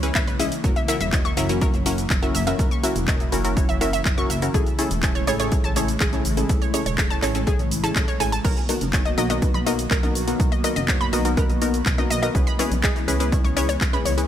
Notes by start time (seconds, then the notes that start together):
Already playing: C#2 C#3 E3 G#3 A#3 E4
0.03 C#4 E4 G#4 B4, closed hi-hat, cabasa
0.15 G#1 C#4 E4 G#4 B4 E5, kick, clap, closed hi-hat, cabasa
0.27 B4, closed hi-hat, cabasa
0.40 C#2 C#4 E4 G#4 D#5 E5, open hi-hat, cabasa
0.52 closed hi-hat, cabasa
0.64 F#1 F#3 C#4 E4 F#4 A#4, kick, closed hi-hat, cabasa
0.76 E5, closed hi-hat, cabasa
0.88 C#4 E4 F#4 A#4 E5, open hi-hat, cabasa
1.01 E1 E5, closed hi-hat, cabasa
1.13 C#4 E4 F#4 D#5, kick, clap, closed hi-hat, cabasa
1.25 C#6, closed hi-hat, cabasa
1.37 F#1 C#4 E4 F#4 A#4 E5, open hi-hat, cabasa
1.49 C#4 E4 F#4 A#4, closed hi-hat, cabasa
1.61 C#4 E4 F#4 A#4 C#5, kick, closed hi-hat, cabasa
1.74 F#1, closed hi-hat, cabasa
1.86 C#4 E4 F#4 A#4, open hi-hat, cabasa
1.98 closed hi-hat, cabasa
2.10 F#1, kick, clap, closed hi-hat, cabasa
2.23 C#4 E4 F#4 A#4 E5, closed hi-hat, cabasa
2.35 F#1 E5, open hi-hat, cabasa
2.47 C#4 E4 F#4 A#4 E5, closed hi-hat, cabasa
2.59 F#1 C#4 E4 F#4 A#4, kick, closed hi-hat, cabasa
2.71 C#6, closed hi-hat, cabasa
2.84 C#4 E4 F#4 A#4 E5, open hi-hat, cabasa
2.96 E1, closed hi-hat, cabasa
3.08 C#4 E4 F#4 A#4 D#5, kick, clap, closed hi-hat, cabasa
3.20 closed hi-hat, cabasa
3.32 F#1 C#4 E4 F#4 A#4, open hi-hat, cabasa
3.44 C#4 E4 F#4 A#4, closed hi-hat, cabasa
3.57 C#4 E4 F#4 C#5, kick, closed hi-hat, cabasa
3.69 F#1 E5, closed hi-hat, cabasa
3.81 C#4 E4 F#4 A#4 E5, open hi-hat, cabasa
3.93 E5, closed hi-hat, cabasa
4.05 F#1, kick, clap, closed hi-hat, cabasa
4.18 C#4 E4 F#4 A#4 C#6, closed hi-hat, cabasa
4.30 F#1 E5, open hi-hat, cabasa
4.42 C#4 E4 F#4 A#4, closed hi-hat, cabasa
4.54 A1 C#3 G#3 A3 C#4 E4 G#4 A4, kick, closed hi-hat, cabasa
4.67 closed hi-hat, cabasa
4.79 C#4 E4 G#4 A4, open hi-hat, cabasa
4.91 E1, closed hi-hat, cabasa
5.03 C#4 E4 G#4 A4, kick, clap, closed hi-hat, cabasa
5.15 C#5, closed hi-hat, cabasa
5.27 A1 C#4 E4 G#4 A4 C#5, open hi-hat, cabasa
5.40 C#4 E4 G#4 A4 C#5, closed hi-hat, cabasa
5.52 C#4 E4 G#4 A4, kick, closed hi-hat, cabasa
5.64 A1 A5, closed hi-hat, cabasa
5.76 C#4 E4 G#4 A4 C#5, open hi-hat, cabasa
5.88 closed hi-hat, cabasa
6.00 A1 G#4, kick, clap, closed hi-hat, cabasa
6.13 C#4 E4 G#4 A4, closed hi-hat, cabasa
6.25 A1, open hi-hat, cabasa
6.37 C#4 E4 G#4 A4, closed hi-hat, cabasa
6.49 A1 C#4 E4 G#4 A4, kick, closed hi-hat, cabasa
6.62 C#5, closed hi-hat, cabasa
6.74 C#4 E4 G#4 A4 C#5, open hi-hat, cabasa
6.86 E1 C#5, closed hi-hat, cabasa
6.98 C#4 E4 G#4 A4, kick, clap, closed hi-hat, cabasa
7.10 A5, closed hi-hat, cabasa
7.22 A1 C#4 E4 G#4 A4 C#5, clap, open hi-hat, cabasa
7.35 C#4 E4 G#4 A4, closed hi-hat, cabasa
7.47 C#4 E4 G#4 A4, kick, closed hi-hat, cabasa
7.59 A1, closed hi-hat, cabasa
7.71 open hi-hat, cabasa
7.84 C#4 E4 G#4 A4 A5, closed hi-hat, cabasa
7.96 A1 C#4 E4 G#4 A4, kick, clap, closed hi-hat, cabasa
8.08 C#5, closed hi-hat, cabasa
8.20 A1 C#4 E4 G#4 A4 G#5, open hi-hat, cabasa
8.32 A5, closed hi-hat, cabasa
8.44 B1 D#3 F#3 A#3 B3 D#4 F#4 A#4, kick, closed hi-hat, crash, cabasa
8.57 closed hi-hat, cabasa
8.69 B3 D#4 F#4 A#4, open hi-hat, high bongo, low conga, cabasa
8.81 F#1, closed hi-hat, high conga, cabasa
8.93 B3 D#4 F#4 C#5, kick, clap, closed hi-hat, cabasa
9.05 D#5, closed hi-hat, cabasa
9.18 B1 B3 D#4 F#4 A#4 D#5, open hi-hat, cabasa
9.30 B3 D#4 F#4 A#4 D#5, closed hi-hat, high bongo, cabasa
9.42 B3 D#4 F#4 B4, kick, closed hi-hat, high conga, cabasa
9.54 B1 B5, closed hi-hat, low conga, cabasa
9.66 B3 D#4 F#4 A#4 D#5, open hi-hat, cabasa
9.79 closed hi-hat, cabasa
9.91 B1 A#4, kick, clap, closed hi-hat, cabasa
10.03 B3 D#4 F#4 A#4, closed hi-hat, high bongo, high conga, low conga, cabasa
10.15 B1, open hi-hat, cabasa
10.28 B3 D#4 F#4 A#4, closed hi-hat, cabasa
10.40 B1 B3 D#4 F#4 A#4, kick, closed hi-hat, cabasa
10.52 D#5, closed hi-hat, cabasa
10.64 B3 D#4 F#4 A#4 D#5, open hi-hat, high bongo, cabasa
10.76 F#1 D#5, closed hi-hat, high conga, cabasa
10.88 B3 D#4 F#4 C#5, kick, clap, closed hi-hat, cabasa
11.01 B5, closed hi-hat, cabasa
11.13 B1 B3 D#4 F#4 A#4 D#5, open hi-hat, cabasa
11.25 B3 D#4 F#4 A#4, closed hi-hat, cabasa
11.37 B3 D#4 F#4 A#4 B4, kick, closed hi-hat, high bongo, high conga, cabasa
11.49 B1, closed hi-hat, cabasa
11.62 B3 D#4 F#4 A#4, open hi-hat, cabasa
11.74 closed hi-hat, cabasa
11.86 B1, kick, clap, closed hi-hat, cabasa
11.98 B3 D#4 F#4 A#4 D#5, closed hi-hat, high bongo, high conga, low conga, cabasa
12.10 B1 D#5, open hi-hat, cabasa
12.23 B3 D#4 F#4 A#4 D#5, closed hi-hat, cabasa
12.35 C#2 C#3 E3 G#3 C#4 E4 G#4 B4, kick, closed hi-hat, cabasa
12.47 B5, closed hi-hat, cabasa
12.59 C#4 E4 G#4 B4 C#5, open hi-hat, low conga, cabasa
12.71 B1, closed hi-hat, high bongo, high conga, cabasa
12.83 C#4 E4 G#4 D#5, kick, clap, closed hi-hat, cabasa
12.96 closed hi-hat, cabasa
13.08 C#2 C#4 E4 G#4 B4, open hi-hat, cabasa
13.20 C#4 E4 G#4 B4, closed hi-hat, cabasa
13.32 C#4 E4 G#4 C#5, kick, closed hi-hat, high bongo, high conga, cabasa
13.44 C#2 C#5, closed hi-hat, low conga, cabasa
13.57 C#4 E4 G#4 B4 C#5, open hi-hat, cabasa
13.69 C#5, closed hi-hat, cabasa
13.81 C#2, kick, clap, closed hi-hat, cabasa
13.93 C#4 E4 G#4 B4 B5, closed hi-hat, high conga, low conga, cabasa
14.05 C#2 C#5, open hi-hat, high bongo, cabasa
14.18 C#4 E4 G#4 B4, closed hi-hat, cabasa